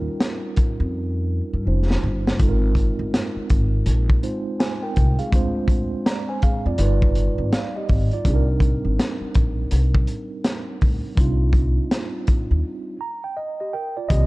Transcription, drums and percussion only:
0.20 snare, closed hi-hat
0.56 kick, closed hi-hat
1.91 snare
2.27 snare
2.39 kick, closed hi-hat
2.75 kick, closed hi-hat
3.14 snare, closed hi-hat
3.50 kick, closed hi-hat
3.86 closed hi-hat
4.10 kick
4.23 closed hi-hat
4.60 snare, closed hi-hat
4.96 kick, closed hi-hat
5.19 closed hi-hat
5.32 kick, closed hi-hat
5.68 kick, closed hi-hat
6.06 snare, closed hi-hat
6.42 kick, closed hi-hat
6.78 closed hi-hat
7.02 kick
7.15 closed hi-hat
7.53 snare, closed hi-hat
7.89 kick, open hi-hat
8.11 closed hi-hat
8.25 kick, closed hi-hat
8.60 kick, closed hi-hat
8.99 snare, closed hi-hat
9.34 kick, closed hi-hat
9.71 closed hi-hat
9.95 kick
10.07 closed hi-hat
10.44 snare, closed hi-hat
10.81 kick, open hi-hat
11.17 kick, closed hi-hat
11.53 kick, closed hi-hat
11.91 snare, closed hi-hat
12.27 kick, closed hi-hat
14.10 kick, closed hi-hat

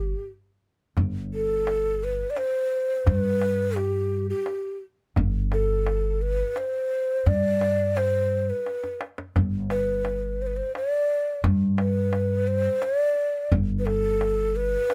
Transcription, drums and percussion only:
0.97 tombak dum
1.67 tombak tek
2.36 tombak tek
3.06 tombak dum
3.41 tombak tek
3.76 tombak tek
4.46 tombak tek
5.16 tombak dum
5.52 tombak tek
5.87 tombak tek
6.56 tombak tek
7.27 tombak dum
7.61 tombak tek
7.97 tombak tek
8.66 tombak tek
8.83 tombak ka
9.01 tombak tek
9.18 tombak ka
9.36 tombak dum
9.70 tombak tek
10.05 tombak tek
10.75 tombak tek
11.44 tombak dum
11.78 tombak tek
12.13 tombak tek
12.82 tombak tek
13.52 tombak dum
13.87 tombak tek
14.21 tombak tek
14.90 tombak tek

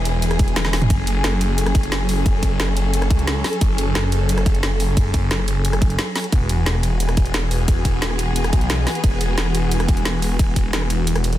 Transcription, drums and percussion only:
0.05 closed hi-hat, ride
0.22 closed hi-hat, ride
0.31 cross-stick, closed hi-hat
0.39 kick, closed hi-hat, ride
0.48 closed hi-hat
0.56 snare, closed hi-hat, high tom, ride
0.65 snare
0.73 snare, open hi-hat, ride
0.82 closed hi-hat, mid tom
0.90 kick, closed hi-hat, ride
1.07 closed hi-hat, ride
1.24 snare, closed hi-hat, ride
1.33 cross-stick
1.41 closed hi-hat, ride
1.58 closed hi-hat, ride
1.66 cross-stick, closed hi-hat
1.75 kick, closed hi-hat, ride
1.83 closed hi-hat
1.92 snare, closed hi-hat, ride
2.09 open hi-hat, ride
2.26 kick, closed hi-hat, ride
2.43 kick, closed hi-hat, ride
2.60 snare, closed hi-hat, ride
2.68 cross-stick
2.77 closed hi-hat, ride
2.94 closed hi-hat, ride
3.02 cross-stick, closed hi-hat
3.10 kick, closed hi-hat, ride
3.19 closed hi-hat
3.27 snare, closed hi-hat, ride
3.44 snare, open hi-hat, ride
3.53 closed hi-hat
3.61 kick, closed hi-hat, ride
3.78 closed hi-hat, ride
3.95 snare, closed hi-hat, ride
4.04 cross-stick
4.12 closed hi-hat, ride
4.29 closed hi-hat, ride
4.38 cross-stick, closed hi-hat
4.46 kick, closed hi-hat, ride
4.55 closed hi-hat
4.63 snare, closed hi-hat, ride
4.80 open hi-hat, ride
4.97 kick, closed hi-hat, ride
5.14 kick, closed hi-hat, ride
5.31 snare, closed hi-hat, ride
5.39 cross-stick
5.48 closed hi-hat, ride
5.65 closed hi-hat, ride
5.73 cross-stick, closed hi-hat
5.82 kick, closed hi-hat, ride
5.90 closed hi-hat
5.99 snare, closed hi-hat, ride
6.16 snare, open hi-hat, ride
6.24 closed hi-hat
6.32 kick, closed hi-hat, ride
6.49 closed hi-hat, ride
6.66 snare, closed hi-hat, ride
6.75 cross-stick
6.83 closed hi-hat, ride
7.00 closed hi-hat, ride
7.09 cross-stick, closed hi-hat
7.17 kick, closed hi-hat, ride
7.26 closed hi-hat
7.34 snare, closed hi-hat, ride
7.51 open hi-hat, ride
7.68 kick, closed hi-hat, ride
7.85 kick, closed hi-hat, ride
8.02 snare, closed hi-hat, ride
8.10 cross-stick
8.19 closed hi-hat, ride
8.36 closed hi-hat, ride
8.44 cross-stick, closed hi-hat
8.53 kick, closed hi-hat, ride
8.61 closed hi-hat
8.70 snare, closed hi-hat, ride
8.87 snare, open hi-hat, ride
8.95 closed hi-hat
9.04 kick, closed hi-hat, ride
9.21 closed hi-hat, ride
9.38 snare, closed hi-hat, ride
9.46 cross-stick
9.55 closed hi-hat, ride
9.72 closed hi-hat, ride
9.80 cross-stick, closed hi-hat
9.88 kick, closed hi-hat, ride
9.97 closed hi-hat
10.05 snare, closed hi-hat, ride
10.22 open hi-hat, ride
10.39 kick, closed hi-hat, ride
10.56 kick, closed hi-hat, ride
10.73 snare, closed hi-hat, ride
10.82 cross-stick
10.90 closed hi-hat, ride
11.07 closed hi-hat, ride
11.16 cross-stick, closed hi-hat
11.24 closed hi-hat, ride
11.33 closed hi-hat

